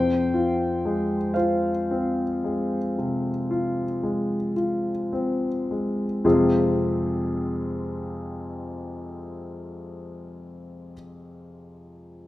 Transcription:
0, 0, Header, 1, 2, 480
1, 0, Start_track
1, 0, Key_signature, -4, "minor"
1, 0, Tempo, 1587302
1, 1379, Tempo, 1675978
1, 1859, Time_signature, 4, 2, 24, 8
1, 1859, Tempo, 1550388
1, 3729, End_track
2, 0, Start_track
2, 0, Title_t, "Grand piano"
2, 0, Program_c, 0, 0
2, 0, Note_on_c, 0, 41, 48
2, 0, Note_on_c, 0, 72, 61
2, 0, Note_on_c, 0, 79, 69
2, 24, Control_c, 0, 64, 127
2, 103, Note_on_c, 0, 65, 37
2, 258, Note_on_c, 0, 56, 41
2, 351, Note_off_c, 0, 65, 0
2, 400, Note_off_c, 0, 72, 0
2, 405, Note_on_c, 0, 77, 45
2, 408, Note_on_c, 0, 72, 41
2, 410, Note_off_c, 0, 79, 0
2, 414, Note_on_c, 0, 65, 40
2, 511, Note_off_c, 0, 56, 0
2, 578, Note_on_c, 0, 60, 39
2, 672, Note_off_c, 0, 65, 0
2, 739, Note_on_c, 0, 56, 35
2, 836, Note_off_c, 0, 60, 0
2, 889, Note_off_c, 0, 41, 0
2, 902, Note_on_c, 0, 48, 34
2, 996, Note_off_c, 0, 56, 0
2, 1060, Note_on_c, 0, 65, 38
2, 1155, Note_off_c, 0, 48, 0
2, 1220, Note_on_c, 0, 56, 33
2, 1315, Note_off_c, 0, 65, 0
2, 1364, Note_off_c, 0, 72, 0
2, 1375, Note_off_c, 0, 77, 0
2, 1380, Note_on_c, 0, 65, 36
2, 1474, Note_off_c, 0, 56, 0
2, 1541, Note_on_c, 0, 60, 40
2, 1639, Note_off_c, 0, 65, 0
2, 1708, Note_on_c, 0, 56, 29
2, 1800, Note_off_c, 0, 60, 0
2, 1858, Note_off_c, 0, 56, 0
2, 1862, Note_on_c, 0, 41, 48
2, 1862, Note_on_c, 0, 48, 42
2, 1862, Note_on_c, 0, 56, 43
2, 1864, Note_on_c, 0, 60, 40
2, 1864, Note_on_c, 0, 68, 46
2, 1865, Note_on_c, 0, 65, 44
2, 1866, Control_c, 0, 64, 0
2, 1932, Control_c, 0, 64, 127
2, 3311, Note_off_c, 0, 41, 0
2, 3311, Note_off_c, 0, 48, 0
2, 3311, Note_off_c, 0, 56, 0
2, 3312, Note_off_c, 0, 60, 0
2, 3313, Note_off_c, 0, 68, 0
2, 3314, Note_off_c, 0, 65, 0
2, 3729, End_track
0, 0, End_of_file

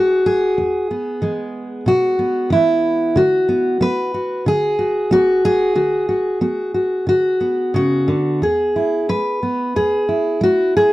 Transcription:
0, 0, Header, 1, 2, 480
1, 0, Start_track
1, 0, Tempo, 647948
1, 432, Time_signature, 4, 2, 24, 8
1, 4751, Tempo, 665927
1, 8005, End_track
2, 0, Start_track
2, 0, Title_t, "Steel-string acoustic guitar"
2, 0, Program_c, 0, 25
2, 0, Note_on_c, 0, 56, 65
2, 0, Note_on_c, 0, 66, 93
2, 0, Note_on_c, 0, 68, 93
2, 185, Note_off_c, 0, 68, 0
2, 193, Note_on_c, 0, 68, 94
2, 383, Note_off_c, 0, 56, 0
2, 428, Note_on_c, 0, 40, 64
2, 669, Note_off_c, 0, 66, 0
2, 672, Note_on_c, 0, 59, 40
2, 858, Note_off_c, 0, 40, 0
2, 902, Note_on_c, 0, 52, 63
2, 908, Note_on_c, 0, 56, 49
2, 1334, Note_off_c, 0, 52, 0
2, 1378, Note_on_c, 0, 47, 66
2, 1386, Note_off_c, 0, 68, 0
2, 1391, Note_on_c, 0, 66, 91
2, 1619, Note_off_c, 0, 59, 0
2, 1622, Note_on_c, 0, 59, 49
2, 1813, Note_off_c, 0, 47, 0
2, 1854, Note_on_c, 0, 52, 68
2, 1867, Note_off_c, 0, 66, 0
2, 1870, Note_on_c, 0, 64, 91
2, 2291, Note_off_c, 0, 52, 0
2, 2316, Note_off_c, 0, 56, 0
2, 2339, Note_on_c, 0, 50, 84
2, 2346, Note_off_c, 0, 59, 0
2, 2348, Note_off_c, 0, 64, 0
2, 2349, Note_on_c, 0, 66, 87
2, 2583, Note_on_c, 0, 59, 47
2, 2775, Note_off_c, 0, 50, 0
2, 2817, Note_off_c, 0, 59, 0
2, 2820, Note_on_c, 0, 59, 73
2, 2832, Note_on_c, 0, 71, 98
2, 3060, Note_off_c, 0, 66, 0
2, 3069, Note_on_c, 0, 66, 46
2, 3257, Note_off_c, 0, 59, 0
2, 3305, Note_on_c, 0, 50, 64
2, 3311, Note_off_c, 0, 71, 0
2, 3318, Note_on_c, 0, 68, 95
2, 3538, Note_off_c, 0, 66, 0
2, 3547, Note_on_c, 0, 66, 48
2, 3740, Note_off_c, 0, 50, 0
2, 3785, Note_on_c, 0, 59, 72
2, 3787, Note_off_c, 0, 66, 0
2, 3796, Note_on_c, 0, 66, 102
2, 4028, Note_off_c, 0, 68, 0
2, 4037, Note_on_c, 0, 68, 110
2, 4217, Note_off_c, 0, 59, 0
2, 4257, Note_off_c, 0, 66, 0
2, 4263, Note_on_c, 0, 50, 75
2, 4266, Note_on_c, 0, 66, 53
2, 4500, Note_off_c, 0, 66, 0
2, 4509, Note_on_c, 0, 66, 44
2, 4699, Note_off_c, 0, 50, 0
2, 4745, Note_off_c, 0, 66, 0
2, 4749, Note_on_c, 0, 59, 58
2, 4754, Note_on_c, 0, 66, 51
2, 4980, Note_off_c, 0, 66, 0
2, 4989, Note_on_c, 0, 66, 45
2, 5177, Note_off_c, 0, 59, 0
2, 5222, Note_on_c, 0, 50, 57
2, 5226, Note_off_c, 0, 66, 0
2, 5237, Note_on_c, 0, 66, 81
2, 5466, Note_on_c, 0, 59, 42
2, 5656, Note_off_c, 0, 50, 0
2, 5707, Note_on_c, 0, 49, 69
2, 5711, Note_off_c, 0, 68, 0
2, 5712, Note_off_c, 0, 66, 0
2, 5721, Note_on_c, 0, 66, 88
2, 5950, Note_off_c, 0, 49, 0
2, 5951, Note_on_c, 0, 50, 60
2, 6195, Note_off_c, 0, 50, 0
2, 6197, Note_on_c, 0, 40, 68
2, 6201, Note_off_c, 0, 66, 0
2, 6205, Note_on_c, 0, 68, 77
2, 6442, Note_on_c, 0, 64, 46
2, 6632, Note_off_c, 0, 40, 0
2, 6680, Note_off_c, 0, 64, 0
2, 6680, Note_on_c, 0, 56, 64
2, 6683, Note_on_c, 0, 71, 91
2, 6920, Note_off_c, 0, 68, 0
2, 6923, Note_off_c, 0, 59, 0
2, 6923, Note_on_c, 0, 59, 40
2, 7109, Note_off_c, 0, 56, 0
2, 7162, Note_on_c, 0, 40, 59
2, 7163, Note_off_c, 0, 59, 0
2, 7166, Note_on_c, 0, 68, 85
2, 7396, Note_off_c, 0, 71, 0
2, 7399, Note_on_c, 0, 64, 44
2, 7588, Note_off_c, 0, 40, 0
2, 7631, Note_on_c, 0, 56, 68
2, 7638, Note_off_c, 0, 68, 0
2, 7650, Note_on_c, 0, 66, 90
2, 7880, Note_off_c, 0, 66, 0
2, 7888, Note_on_c, 0, 68, 97
2, 8005, Note_off_c, 0, 56, 0
2, 8005, Note_off_c, 0, 64, 0
2, 8005, Note_off_c, 0, 68, 0
2, 8005, End_track
0, 0, End_of_file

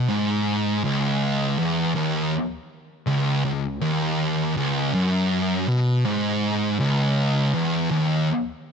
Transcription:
0, 0, Header, 1, 2, 480
1, 0, Start_track
1, 0, Key_signature, 4, "minor"
1, 0, Tempo, 743494
1, 68, Time_signature, 4, 2, 24, 8
1, 5630, End_track
2, 0, Start_track
2, 0, Title_t, "Distorted electric guitar"
2, 0, Program_c, 0, 30
2, 61, Note_on_c, 0, 44, 114
2, 537, Note_off_c, 0, 44, 0
2, 546, Note_on_c, 0, 37, 96
2, 1020, Note_off_c, 0, 37, 0
2, 1026, Note_on_c, 0, 40, 119
2, 1260, Note_off_c, 0, 40, 0
2, 1266, Note_on_c, 0, 39, 95
2, 1500, Note_off_c, 0, 39, 0
2, 1979, Note_on_c, 0, 37, 117
2, 2216, Note_off_c, 0, 37, 0
2, 2226, Note_on_c, 0, 37, 78
2, 2419, Note_off_c, 0, 37, 0
2, 2461, Note_on_c, 0, 39, 101
2, 2937, Note_off_c, 0, 39, 0
2, 2950, Note_on_c, 0, 37, 113
2, 3182, Note_off_c, 0, 37, 0
2, 3192, Note_on_c, 0, 42, 100
2, 3663, Note_off_c, 0, 42, 0
2, 3669, Note_on_c, 0, 47, 94
2, 3902, Note_off_c, 0, 47, 0
2, 3909, Note_on_c, 0, 44, 113
2, 4382, Note_off_c, 0, 44, 0
2, 4387, Note_on_c, 0, 37, 106
2, 4861, Note_off_c, 0, 37, 0
2, 4869, Note_on_c, 0, 40, 108
2, 5102, Note_off_c, 0, 40, 0
2, 5106, Note_on_c, 0, 39, 101
2, 5340, Note_off_c, 0, 39, 0
2, 5630, End_track
0, 0, End_of_file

